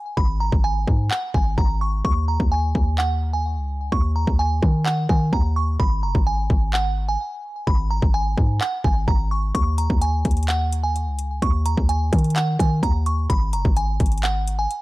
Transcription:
0.00 0.14 G#5 medium
0.17 0.51 G#1 loud
0.17 0.37 B5 loud
0.17 kick loud
0.40 0.60 A#5 medium
0.52 0.86 G#1 loud
0.52 kick loud
0.64 1.08 G#5 medium
0.88 1.10 G#2 loud
0.88 kick medium
1.11 1.31 F#5 medium
1.11 clap loud
1.34 1.57 G#1 loud
1.34 1.54 G#5 medium
1.34 kick medium
1.58 2.03 G#1 loud
1.58 1.78 A#5 medium
1.58 kick medium
1.81 2.01 C#6 medium
2.05 2.38 D#2 loud
2.05 2.24 C#6 loud
2.05 kick loud
2.28 2.48 A#5 medium
2.40 2.74 D#2 loud
2.40 kick loud
2.52 2.96 G#5 medium
2.75 3.58 D#2 loud
2.75 kick loud
2.98 3.31 F#5 medium
2.98 clap loud
3.33 3.89 G#5 medium
3.57 3.90 C#2 loud
3.92 4.26 D#2 loud
3.92 4.12 C#6 loud
3.92 kick loud
4.16 4.35 A#5 medium
4.27 4.61 D#2 loud
4.27 kick medium
4.39 4.83 G#5 loud
4.62 5.08 D#3 loud
4.62 kick loud
4.86 5.06 F#5 medium
4.86 clap loud
5.09 5.32 D#3 loud
5.09 5.29 G#5 medium
5.09 kick medium
5.33 5.78 D#2 loud
5.33 5.53 A#5 medium
5.33 kick medium
5.56 5.76 C#6 medium
5.80 6.05 G#1 loud
5.80 5.99 B5 loud
5.80 kick loud
6.03 6.14 F#1 loud
6.03 6.23 A#5 medium
6.15 6.49 G#1 loud
6.15 kick loud
6.27 6.71 G#5 medium
6.50 7.18 G#1 loud
6.50 kick loud
6.74 7.07 F#5 medium
6.74 clap loud
7.09 7.64 G#5 medium
7.67 8.01 G#1 loud
7.67 7.87 B5 loud
7.67 kick loud
7.91 8.10 A#5 medium
8.02 8.36 G#1 loud
8.02 kick loud
8.14 8.58 G#5 medium
8.38 8.60 G#2 loud
8.38 kick loud
8.61 8.81 F#5 medium
8.61 clap loud
8.84 9.07 G#1 loud
8.84 9.04 G#5 medium
8.84 kick medium
9.08 9.53 G#1 loud
9.08 9.28 A#5 medium
9.08 kick medium
9.31 9.51 C#6 medium
9.55 9.88 D#2 loud
9.55 9.74 C#6 loud
9.55 kick loud
9.55 closed hi-hat medium
9.78 9.98 A#5 medium
9.78 closed hi-hat medium
9.90 10.24 D#2 loud
9.90 kick loud
10.02 10.46 G#5 medium
10.02 closed hi-hat medium
10.25 11.09 D#2 loud
10.25 kick loud
10.25 closed hi-hat medium
10.31 closed hi-hat medium
10.37 closed hi-hat medium
10.43 closed hi-hat soft
10.48 10.82 F#5 medium
10.48 clap loud
10.48 closed hi-hat medium
10.72 closed hi-hat medium
10.84 11.39 G#5 medium
10.96 closed hi-hat medium
11.07 11.40 C#2 loud
11.19 closed hi-hat medium
11.42 11.76 D#2 loud
11.42 11.62 C#6 loud
11.42 kick loud
11.42 closed hi-hat medium
11.66 11.85 A#5 medium
11.66 closed hi-hat medium
11.77 12.11 D#2 loud
11.77 kick medium
11.89 12.33 G#5 medium
11.89 closed hi-hat medium
12.13 12.58 D#3 loud
12.13 kick loud
12.13 closed hi-hat medium
12.19 closed hi-hat medium
12.24 closed hi-hat medium
12.30 closed hi-hat soft
12.36 12.56 F#5 medium
12.36 clap loud
12.36 closed hi-hat medium
12.59 12.82 D#3 loud
12.59 12.79 G#5 medium
12.59 kick medium
12.59 closed hi-hat medium
12.83 13.28 D#2 loud
12.83 13.03 A#5 medium
12.83 kick medium
12.83 closed hi-hat medium
13.06 13.26 C#6 medium
13.06 closed hi-hat medium
13.30 13.55 G#1 loud
13.30 13.49 B5 loud
13.30 kick loud
13.30 closed hi-hat medium
13.53 13.64 F#1 loud
13.53 13.73 A#5 medium
13.53 closed hi-hat medium
13.65 13.99 G#1 loud
13.65 kick loud
13.77 14.21 G#5 medium
13.77 closed hi-hat medium
14.00 14.68 G#1 loud
14.00 kick loud
14.00 closed hi-hat medium
14.06 closed hi-hat medium
14.12 closed hi-hat medium
14.18 closed hi-hat soft
14.23 14.57 F#5 medium
14.23 clap loud
14.23 closed hi-hat medium
14.47 closed hi-hat medium
14.59 14.82 G#5 medium
14.71 closed hi-hat medium

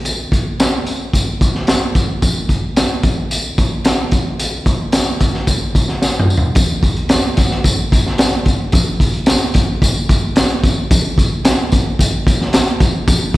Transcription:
0.05 closed hi-hat medium
0.05 tambourine medium
0.32 kick medium
0.32 closed hi-hat medium
0.32 tambourine soft
0.60 snare loud
0.60 closed hi-hat loud
0.60 tambourine medium
0.87 closed hi-hat medium
0.87 tambourine soft
1.13 kick medium
1.13 closed hi-hat medium
1.13 tambourine medium
1.41 kick medium
1.41 closed hi-hat medium
1.41 tambourine medium
1.55 snare soft
1.67 snare loud
1.67 closed hi-hat medium
1.67 tambourine medium
1.95 kick medium
1.95 closed hi-hat medium
1.95 tambourine medium
2.22 kick loud
2.22 closed hi-hat medium
2.22 tambourine medium
2.49 kick medium
2.49 closed hi-hat medium
2.49 tambourine soft
2.76 snare loud
2.76 closed hi-hat loud
2.76 tambourine medium
3.03 kick loud
3.03 closed hi-hat medium
3.03 tambourine soft
3.31 closed hi-hat medium
3.31 tambourine medium
3.58 kick medium
3.58 closed hi-hat medium
3.58 tambourine medium
3.85 snare loud
3.85 closed hi-hat medium
3.85 tambourine medium
4.12 kick loud
4.12 closed hi-hat medium
4.12 tambourine medium
4.39 closed hi-hat medium
4.39 tambourine medium
4.66 kick medium
4.66 closed hi-hat medium
4.66 tambourine soft
4.92 snare loud
4.92 closed hi-hat loud
4.92 tambourine loud
5.21 kick medium
5.21 closed hi-hat medium
5.21 tambourine soft
5.34 snare soft
5.47 kick medium
5.47 closed hi-hat medium
5.47 tambourine medium
5.75 kick medium
5.75 closed hi-hat medium
5.75 tambourine medium
5.88 snare soft
6.02 snare medium
6.02 tambourine medium
6.19 mid tom medium
6.30 tambourine medium
6.37 floor tom loud
6.55 kick loud
6.55 closed hi-hat medium
6.55 tambourine medium
6.83 kick medium
6.83 closed hi-hat medium
6.83 tambourine soft
6.97 closed hi-hat soft
7.09 snare loud
7.09 closed hi-hat medium
7.09 tambourine medium
7.37 kick medium
7.37 snare soft
7.37 closed hi-hat medium
7.37 tambourine medium
7.51 snare soft
7.64 kick medium
7.64 closed hi-hat medium
7.64 tambourine medium
7.92 kick medium
7.92 closed hi-hat medium
7.92 tambourine medium
8.07 snare soft
8.18 snare loud
8.18 closed hi-hat medium
8.18 tambourine medium
8.32 closed hi-hat soft
8.46 kick medium
8.46 closed hi-hat medium
8.46 tambourine medium
8.72 kick loud
8.72 closed hi-hat medium
8.72 tambourine medium
9.00 kick medium
9.00 closed hi-hat medium
9.00 tambourine soft
9.14 closed hi-hat soft
9.26 snare loud
9.26 closed hi-hat loud
9.26 tambourine loud
9.54 kick medium
9.54 closed hi-hat medium
9.54 tambourine medium
9.82 kick medium
9.82 closed hi-hat medium
9.82 tambourine loud
10.09 kick medium
10.09 closed hi-hat medium
10.09 tambourine medium
10.36 snare loud
10.36 closed hi-hat medium
10.36 tambourine medium
10.50 closed hi-hat medium
10.64 kick medium
10.64 closed hi-hat medium
10.64 tambourine medium
10.91 kick loud
10.91 closed hi-hat medium
10.91 tambourine medium
11.18 kick medium
11.18 closed hi-hat medium
11.18 tambourine medium
11.45 snare loud
11.45 closed hi-hat loud
11.45 tambourine loud
11.72 kick medium
11.72 closed hi-hat medium
11.72 tambourine medium
11.99 kick medium
11.99 closed hi-hat medium
11.99 tambourine loud
12.27 kick loud
12.27 closed hi-hat medium
12.27 tambourine medium
12.41 snare soft
12.53 snare loud
12.53 closed hi-hat medium
12.53 tambourine medium
12.68 closed hi-hat soft
12.80 kick medium
12.80 closed hi-hat medium
12.80 tambourine soft
13.08 kick loud
13.08 closed hi-hat medium
13.08 tambourine medium

